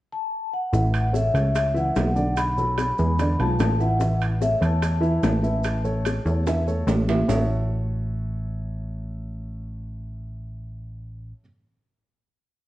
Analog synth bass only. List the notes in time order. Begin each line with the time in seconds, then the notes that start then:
0.73 A1
1.34 C#2
1.96 B1
2.99 E2
3.40 B1
3.60 A1
4.62 E2
5.23 A1
6.26 E2
6.87 A1
7.28 A1